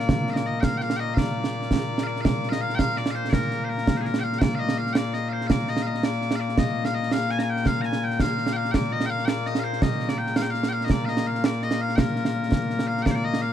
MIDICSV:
0, 0, Header, 1, 3, 480
1, 0, Start_track
1, 0, Key_signature, -2, "major"
1, 0, Tempo, 360360
1, 113, Time_signature, 6, 3, 24, 8
1, 18021, End_track
2, 0, Start_track
2, 0, Title_t, "Bagpipes"
2, 0, Program_c, 0, 109
2, 0, Note_on_c, 0, 46, 89
2, 0, Note_on_c, 0, 58, 89
2, 0, Note_on_c, 0, 74, 87
2, 401, Note_off_c, 0, 74, 0
2, 401, Note_on_c, 0, 77, 70
2, 447, Note_off_c, 0, 77, 0
2, 447, Note_on_c, 0, 75, 70
2, 474, Note_off_c, 0, 75, 0
2, 474, Note_on_c, 0, 74, 82
2, 614, Note_off_c, 0, 74, 0
2, 614, Note_on_c, 0, 75, 92
2, 806, Note_off_c, 0, 75, 0
2, 806, Note_on_c, 0, 79, 91
2, 850, Note_off_c, 0, 79, 0
2, 850, Note_on_c, 0, 77, 91
2, 1030, Note_off_c, 0, 77, 0
2, 1031, Note_on_c, 0, 79, 99
2, 1090, Note_off_c, 0, 79, 0
2, 1090, Note_on_c, 0, 77, 99
2, 1282, Note_off_c, 0, 77, 0
2, 1282, Note_on_c, 0, 79, 99
2, 1329, Note_off_c, 0, 79, 0
2, 1329, Note_on_c, 0, 75, 99
2, 1523, Note_off_c, 0, 75, 0
2, 1524, Note_on_c, 0, 77, 85
2, 1576, Note_off_c, 0, 77, 0
2, 1576, Note_on_c, 0, 74, 85
2, 2708, Note_off_c, 0, 74, 0
2, 2708, Note_on_c, 0, 77, 96
2, 2755, Note_off_c, 0, 77, 0
2, 2755, Note_on_c, 0, 74, 96
2, 2943, Note_off_c, 0, 74, 0
2, 2943, Note_on_c, 0, 77, 98
2, 2995, Note_off_c, 0, 77, 0
2, 2995, Note_on_c, 0, 74, 98
2, 3319, Note_off_c, 0, 74, 0
2, 3319, Note_on_c, 0, 77, 92
2, 3365, Note_off_c, 0, 77, 0
2, 3365, Note_on_c, 0, 75, 92
2, 3480, Note_off_c, 0, 75, 0
2, 3480, Note_on_c, 0, 77, 107
2, 3661, Note_off_c, 0, 77, 0
2, 3661, Note_on_c, 0, 79, 120
2, 3714, Note_on_c, 0, 77, 120
2, 3715, Note_off_c, 0, 79, 0
2, 3962, Note_off_c, 0, 77, 0
2, 3962, Note_on_c, 0, 74, 99
2, 4140, Note_off_c, 0, 74, 0
2, 4140, Note_on_c, 0, 77, 85
2, 4197, Note_off_c, 0, 77, 0
2, 4197, Note_on_c, 0, 72, 85
2, 4394, Note_off_c, 0, 72, 0
2, 4395, Note_on_c, 0, 74, 95
2, 4439, Note_on_c, 0, 70, 95
2, 4440, Note_off_c, 0, 74, 0
2, 4856, Note_off_c, 0, 70, 0
2, 4856, Note_on_c, 0, 72, 64
2, 4920, Note_off_c, 0, 72, 0
2, 4920, Note_on_c, 0, 70, 96
2, 5290, Note_off_c, 0, 70, 0
2, 5290, Note_on_c, 0, 72, 64
2, 5339, Note_off_c, 0, 72, 0
2, 5339, Note_on_c, 0, 68, 64
2, 5397, Note_off_c, 0, 68, 0
2, 5397, Note_on_c, 0, 70, 94
2, 5589, Note_off_c, 0, 70, 0
2, 5589, Note_on_c, 0, 79, 88
2, 5640, Note_off_c, 0, 79, 0
2, 5640, Note_on_c, 0, 77, 88
2, 5841, Note_off_c, 0, 77, 0
2, 5841, Note_on_c, 0, 79, 90
2, 5884, Note_off_c, 0, 79, 0
2, 5884, Note_on_c, 0, 74, 90
2, 6060, Note_off_c, 0, 74, 0
2, 6060, Note_on_c, 0, 77, 99
2, 6120, Note_off_c, 0, 77, 0
2, 6120, Note_on_c, 0, 75, 99
2, 6368, Note_off_c, 0, 75, 0
2, 6368, Note_on_c, 0, 77, 95
2, 6566, Note_off_c, 0, 77, 0
2, 6566, Note_on_c, 0, 79, 101
2, 6617, Note_off_c, 0, 79, 0
2, 6617, Note_on_c, 0, 74, 101
2, 6841, Note_off_c, 0, 74, 0
2, 6841, Note_on_c, 0, 75, 84
2, 7048, Note_off_c, 0, 75, 0
2, 7048, Note_on_c, 0, 77, 85
2, 7097, Note_off_c, 0, 77, 0
2, 7097, Note_on_c, 0, 72, 85
2, 7288, Note_off_c, 0, 72, 0
2, 7288, Note_on_c, 0, 77, 104
2, 7338, Note_off_c, 0, 77, 0
2, 7338, Note_on_c, 0, 74, 104
2, 7578, Note_off_c, 0, 74, 0
2, 7578, Note_on_c, 0, 75, 103
2, 7757, Note_off_c, 0, 75, 0
2, 7757, Note_on_c, 0, 77, 87
2, 7815, Note_off_c, 0, 77, 0
2, 7815, Note_on_c, 0, 75, 87
2, 7955, Note_off_c, 0, 75, 0
2, 7955, Note_on_c, 0, 75, 78
2, 8051, Note_off_c, 0, 75, 0
2, 8051, Note_on_c, 0, 74, 109
2, 8467, Note_off_c, 0, 74, 0
2, 8467, Note_on_c, 0, 77, 82
2, 8526, Note_off_c, 0, 77, 0
2, 8526, Note_on_c, 0, 74, 82
2, 8769, Note_off_c, 0, 74, 0
2, 8769, Note_on_c, 0, 75, 94
2, 9128, Note_off_c, 0, 75, 0
2, 9128, Note_on_c, 0, 77, 98
2, 9252, Note_off_c, 0, 77, 0
2, 9252, Note_on_c, 0, 75, 90
2, 9489, Note_off_c, 0, 75, 0
2, 9489, Note_on_c, 0, 77, 109
2, 9731, Note_off_c, 0, 77, 0
2, 9731, Note_on_c, 0, 80, 107
2, 9842, Note_off_c, 0, 80, 0
2, 9842, Note_on_c, 0, 82, 82
2, 9891, Note_off_c, 0, 82, 0
2, 9891, Note_on_c, 0, 80, 82
2, 9977, Note_off_c, 0, 80, 0
2, 9977, Note_on_c, 0, 79, 101
2, 10213, Note_off_c, 0, 79, 0
2, 10213, Note_on_c, 0, 77, 107
2, 10409, Note_off_c, 0, 77, 0
2, 10409, Note_on_c, 0, 82, 102
2, 10459, Note_off_c, 0, 82, 0
2, 10459, Note_on_c, 0, 80, 102
2, 10702, Note_off_c, 0, 80, 0
2, 10702, Note_on_c, 0, 79, 101
2, 10929, Note_off_c, 0, 79, 0
2, 10929, Note_on_c, 0, 77, 100
2, 11357, Note_off_c, 0, 77, 0
2, 11357, Note_on_c, 0, 79, 88
2, 11407, Note_off_c, 0, 79, 0
2, 11407, Note_on_c, 0, 77, 88
2, 11605, Note_off_c, 0, 77, 0
2, 11605, Note_on_c, 0, 79, 87
2, 11650, Note_off_c, 0, 79, 0
2, 11650, Note_on_c, 0, 74, 87
2, 11884, Note_off_c, 0, 74, 0
2, 11884, Note_on_c, 0, 75, 96
2, 12065, Note_off_c, 0, 75, 0
2, 12065, Note_on_c, 0, 79, 106
2, 12121, Note_off_c, 0, 79, 0
2, 12121, Note_on_c, 0, 77, 106
2, 12323, Note_off_c, 0, 77, 0
2, 12323, Note_on_c, 0, 79, 99
2, 12368, Note_off_c, 0, 79, 0
2, 12368, Note_on_c, 0, 74, 99
2, 12605, Note_off_c, 0, 74, 0
2, 12605, Note_on_c, 0, 75, 91
2, 12784, Note_off_c, 0, 75, 0
2, 12784, Note_on_c, 0, 77, 83
2, 12837, Note_off_c, 0, 77, 0
2, 12837, Note_on_c, 0, 72, 83
2, 13081, Note_off_c, 0, 72, 0
2, 13081, Note_on_c, 0, 75, 95
2, 13438, Note_off_c, 0, 75, 0
2, 13438, Note_on_c, 0, 74, 82
2, 13560, Note_off_c, 0, 74, 0
2, 13560, Note_on_c, 0, 79, 105
2, 13803, Note_off_c, 0, 79, 0
2, 13803, Note_on_c, 0, 77, 104
2, 13877, Note_off_c, 0, 77, 0
2, 13877, Note_on_c, 0, 79, 86
2, 13989, Note_off_c, 0, 79, 0
2, 13989, Note_on_c, 0, 77, 103
2, 14236, Note_off_c, 0, 77, 0
2, 14236, Note_on_c, 0, 79, 88
2, 14287, Note_off_c, 0, 79, 0
2, 14287, Note_on_c, 0, 77, 88
2, 14449, Note_off_c, 0, 77, 0
2, 14449, Note_on_c, 0, 75, 67
2, 14523, Note_off_c, 0, 75, 0
2, 14523, Note_on_c, 0, 74, 97
2, 14723, Note_off_c, 0, 74, 0
2, 14723, Note_on_c, 0, 77, 89
2, 14772, Note_off_c, 0, 77, 0
2, 14772, Note_on_c, 0, 75, 89
2, 15013, Note_off_c, 0, 75, 0
2, 15013, Note_on_c, 0, 77, 84
2, 15256, Note_off_c, 0, 77, 0
2, 15256, Note_on_c, 0, 74, 89
2, 15490, Note_off_c, 0, 74, 0
2, 15490, Note_on_c, 0, 75, 78
2, 15736, Note_off_c, 0, 75, 0
2, 15736, Note_on_c, 0, 77, 96
2, 15927, Note_off_c, 0, 77, 0
2, 15927, Note_on_c, 0, 79, 80
2, 15974, Note_off_c, 0, 79, 0
2, 15974, Note_on_c, 0, 70, 80
2, 17149, Note_off_c, 0, 70, 0
2, 17149, Note_on_c, 0, 77, 90
2, 17347, Note_off_c, 0, 77, 0
2, 17347, Note_on_c, 0, 79, 88
2, 17394, Note_on_c, 0, 74, 88
2, 17395, Note_off_c, 0, 79, 0
2, 17462, Note_off_c, 0, 74, 0
2, 17462, Note_on_c, 0, 72, 70
2, 17520, Note_off_c, 0, 72, 0
2, 17520, Note_on_c, 0, 74, 110
2, 17639, Note_off_c, 0, 74, 0
2, 17639, Note_on_c, 0, 75, 99
2, 17874, Note_off_c, 0, 75, 0
2, 17874, Note_on_c, 0, 77, 106
2, 18021, Note_off_c, 0, 46, 0
2, 18021, Note_off_c, 0, 58, 0
2, 18021, Note_off_c, 0, 77, 0
2, 18021, End_track
3, 0, Start_track
3, 0, Title_t, "Drums"
3, 118, Note_on_c, 9, 35, 75
3, 118, Note_on_c, 9, 38, 108
3, 251, Note_off_c, 9, 35, 0
3, 251, Note_off_c, 9, 38, 0
3, 361, Note_on_c, 9, 38, 33
3, 480, Note_off_c, 9, 38, 0
3, 480, Note_on_c, 9, 38, 73
3, 613, Note_off_c, 9, 38, 0
3, 836, Note_on_c, 9, 35, 55
3, 836, Note_on_c, 9, 38, 104
3, 970, Note_off_c, 9, 35, 0
3, 970, Note_off_c, 9, 38, 0
3, 1073, Note_on_c, 9, 38, 31
3, 1197, Note_off_c, 9, 38, 0
3, 1197, Note_on_c, 9, 38, 80
3, 1331, Note_off_c, 9, 38, 0
3, 1559, Note_on_c, 9, 35, 63
3, 1559, Note_on_c, 9, 38, 86
3, 1693, Note_off_c, 9, 35, 0
3, 1693, Note_off_c, 9, 38, 0
3, 1919, Note_on_c, 9, 38, 75
3, 2052, Note_off_c, 9, 38, 0
3, 2157, Note_on_c, 9, 38, 27
3, 2274, Note_off_c, 9, 38, 0
3, 2274, Note_on_c, 9, 35, 55
3, 2274, Note_on_c, 9, 38, 94
3, 2408, Note_off_c, 9, 35, 0
3, 2408, Note_off_c, 9, 38, 0
3, 2637, Note_on_c, 9, 38, 76
3, 2770, Note_off_c, 9, 38, 0
3, 2878, Note_on_c, 9, 38, 29
3, 2997, Note_off_c, 9, 38, 0
3, 2997, Note_on_c, 9, 35, 60
3, 2997, Note_on_c, 9, 38, 100
3, 3130, Note_off_c, 9, 35, 0
3, 3130, Note_off_c, 9, 38, 0
3, 3240, Note_on_c, 9, 38, 28
3, 3356, Note_off_c, 9, 38, 0
3, 3356, Note_on_c, 9, 38, 69
3, 3490, Note_off_c, 9, 38, 0
3, 3594, Note_on_c, 9, 38, 29
3, 3716, Note_off_c, 9, 38, 0
3, 3716, Note_on_c, 9, 35, 56
3, 3716, Note_on_c, 9, 38, 95
3, 3849, Note_off_c, 9, 35, 0
3, 3849, Note_off_c, 9, 38, 0
3, 3956, Note_on_c, 9, 38, 26
3, 4073, Note_off_c, 9, 38, 0
3, 4073, Note_on_c, 9, 38, 80
3, 4206, Note_off_c, 9, 38, 0
3, 4431, Note_on_c, 9, 35, 58
3, 4431, Note_on_c, 9, 38, 94
3, 4564, Note_off_c, 9, 35, 0
3, 4564, Note_off_c, 9, 38, 0
3, 4674, Note_on_c, 9, 38, 30
3, 4807, Note_off_c, 9, 38, 0
3, 5035, Note_on_c, 9, 38, 28
3, 5160, Note_off_c, 9, 38, 0
3, 5160, Note_on_c, 9, 35, 61
3, 5160, Note_on_c, 9, 38, 102
3, 5293, Note_off_c, 9, 35, 0
3, 5293, Note_off_c, 9, 38, 0
3, 5398, Note_on_c, 9, 38, 28
3, 5514, Note_off_c, 9, 38, 0
3, 5514, Note_on_c, 9, 38, 86
3, 5648, Note_off_c, 9, 38, 0
3, 5763, Note_on_c, 9, 38, 36
3, 5881, Note_off_c, 9, 38, 0
3, 5881, Note_on_c, 9, 35, 68
3, 5881, Note_on_c, 9, 38, 111
3, 6015, Note_off_c, 9, 35, 0
3, 6015, Note_off_c, 9, 38, 0
3, 6241, Note_on_c, 9, 38, 78
3, 6374, Note_off_c, 9, 38, 0
3, 6481, Note_on_c, 9, 38, 30
3, 6597, Note_off_c, 9, 38, 0
3, 6597, Note_on_c, 9, 38, 102
3, 6730, Note_off_c, 9, 38, 0
3, 6841, Note_on_c, 9, 38, 31
3, 6974, Note_off_c, 9, 38, 0
3, 7208, Note_on_c, 9, 38, 35
3, 7323, Note_off_c, 9, 38, 0
3, 7323, Note_on_c, 9, 35, 57
3, 7323, Note_on_c, 9, 38, 99
3, 7456, Note_off_c, 9, 35, 0
3, 7456, Note_off_c, 9, 38, 0
3, 7559, Note_on_c, 9, 38, 29
3, 7680, Note_off_c, 9, 38, 0
3, 7680, Note_on_c, 9, 38, 74
3, 7814, Note_off_c, 9, 38, 0
3, 7921, Note_on_c, 9, 38, 27
3, 8036, Note_off_c, 9, 38, 0
3, 8036, Note_on_c, 9, 38, 82
3, 8169, Note_off_c, 9, 38, 0
3, 8279, Note_on_c, 9, 38, 27
3, 8401, Note_off_c, 9, 38, 0
3, 8401, Note_on_c, 9, 38, 82
3, 8534, Note_off_c, 9, 38, 0
3, 8642, Note_on_c, 9, 38, 32
3, 8758, Note_off_c, 9, 38, 0
3, 8758, Note_on_c, 9, 35, 57
3, 8758, Note_on_c, 9, 38, 95
3, 8891, Note_off_c, 9, 35, 0
3, 8891, Note_off_c, 9, 38, 0
3, 9124, Note_on_c, 9, 38, 62
3, 9257, Note_off_c, 9, 38, 0
3, 9363, Note_on_c, 9, 38, 25
3, 9476, Note_off_c, 9, 38, 0
3, 9476, Note_on_c, 9, 38, 84
3, 9610, Note_off_c, 9, 38, 0
3, 9719, Note_on_c, 9, 38, 26
3, 9840, Note_off_c, 9, 38, 0
3, 9840, Note_on_c, 9, 38, 63
3, 9973, Note_off_c, 9, 38, 0
3, 10076, Note_on_c, 9, 38, 27
3, 10200, Note_off_c, 9, 38, 0
3, 10200, Note_on_c, 9, 35, 54
3, 10200, Note_on_c, 9, 38, 75
3, 10333, Note_off_c, 9, 35, 0
3, 10333, Note_off_c, 9, 38, 0
3, 10435, Note_on_c, 9, 38, 23
3, 10557, Note_off_c, 9, 38, 0
3, 10557, Note_on_c, 9, 38, 61
3, 10690, Note_off_c, 9, 38, 0
3, 10798, Note_on_c, 9, 38, 23
3, 10916, Note_off_c, 9, 38, 0
3, 10916, Note_on_c, 9, 35, 49
3, 10916, Note_on_c, 9, 38, 86
3, 11049, Note_off_c, 9, 35, 0
3, 11049, Note_off_c, 9, 38, 0
3, 11162, Note_on_c, 9, 38, 26
3, 11276, Note_off_c, 9, 38, 0
3, 11276, Note_on_c, 9, 38, 74
3, 11409, Note_off_c, 9, 38, 0
3, 11521, Note_on_c, 9, 38, 30
3, 11643, Note_off_c, 9, 38, 0
3, 11643, Note_on_c, 9, 35, 58
3, 11643, Note_on_c, 9, 38, 92
3, 11776, Note_off_c, 9, 35, 0
3, 11776, Note_off_c, 9, 38, 0
3, 11994, Note_on_c, 9, 38, 67
3, 12127, Note_off_c, 9, 38, 0
3, 12238, Note_on_c, 9, 38, 27
3, 12359, Note_off_c, 9, 38, 0
3, 12359, Note_on_c, 9, 38, 93
3, 12492, Note_off_c, 9, 38, 0
3, 12604, Note_on_c, 9, 38, 28
3, 12722, Note_off_c, 9, 38, 0
3, 12722, Note_on_c, 9, 38, 79
3, 12855, Note_off_c, 9, 38, 0
3, 12960, Note_on_c, 9, 38, 32
3, 13079, Note_off_c, 9, 38, 0
3, 13079, Note_on_c, 9, 35, 65
3, 13079, Note_on_c, 9, 38, 98
3, 13212, Note_off_c, 9, 35, 0
3, 13212, Note_off_c, 9, 38, 0
3, 13319, Note_on_c, 9, 38, 29
3, 13437, Note_off_c, 9, 38, 0
3, 13437, Note_on_c, 9, 38, 71
3, 13571, Note_off_c, 9, 38, 0
3, 13676, Note_on_c, 9, 38, 31
3, 13800, Note_off_c, 9, 38, 0
3, 13800, Note_on_c, 9, 38, 103
3, 13933, Note_off_c, 9, 38, 0
3, 14042, Note_on_c, 9, 38, 28
3, 14164, Note_off_c, 9, 38, 0
3, 14164, Note_on_c, 9, 38, 74
3, 14297, Note_off_c, 9, 38, 0
3, 14400, Note_on_c, 9, 38, 31
3, 14513, Note_off_c, 9, 38, 0
3, 14513, Note_on_c, 9, 35, 60
3, 14513, Note_on_c, 9, 38, 100
3, 14647, Note_off_c, 9, 35, 0
3, 14647, Note_off_c, 9, 38, 0
3, 14758, Note_on_c, 9, 38, 28
3, 14878, Note_off_c, 9, 38, 0
3, 14878, Note_on_c, 9, 38, 76
3, 15011, Note_off_c, 9, 38, 0
3, 15117, Note_on_c, 9, 38, 28
3, 15237, Note_off_c, 9, 38, 0
3, 15237, Note_on_c, 9, 38, 105
3, 15371, Note_off_c, 9, 38, 0
3, 15479, Note_on_c, 9, 38, 29
3, 15596, Note_off_c, 9, 38, 0
3, 15596, Note_on_c, 9, 38, 81
3, 15729, Note_off_c, 9, 38, 0
3, 15837, Note_on_c, 9, 38, 33
3, 15956, Note_off_c, 9, 38, 0
3, 15956, Note_on_c, 9, 35, 62
3, 15956, Note_on_c, 9, 38, 105
3, 16089, Note_off_c, 9, 35, 0
3, 16089, Note_off_c, 9, 38, 0
3, 16195, Note_on_c, 9, 38, 32
3, 16317, Note_off_c, 9, 38, 0
3, 16317, Note_on_c, 9, 38, 71
3, 16450, Note_off_c, 9, 38, 0
3, 16557, Note_on_c, 9, 38, 27
3, 16675, Note_off_c, 9, 38, 0
3, 16675, Note_on_c, 9, 35, 56
3, 16675, Note_on_c, 9, 38, 91
3, 16808, Note_off_c, 9, 35, 0
3, 16808, Note_off_c, 9, 38, 0
3, 16917, Note_on_c, 9, 38, 28
3, 17038, Note_off_c, 9, 38, 0
3, 17038, Note_on_c, 9, 38, 70
3, 17171, Note_off_c, 9, 38, 0
3, 17281, Note_on_c, 9, 38, 31
3, 17398, Note_off_c, 9, 38, 0
3, 17398, Note_on_c, 9, 35, 64
3, 17398, Note_on_c, 9, 38, 87
3, 17531, Note_off_c, 9, 35, 0
3, 17531, Note_off_c, 9, 38, 0
3, 17762, Note_on_c, 9, 38, 74
3, 17896, Note_off_c, 9, 38, 0
3, 18021, End_track
0, 0, End_of_file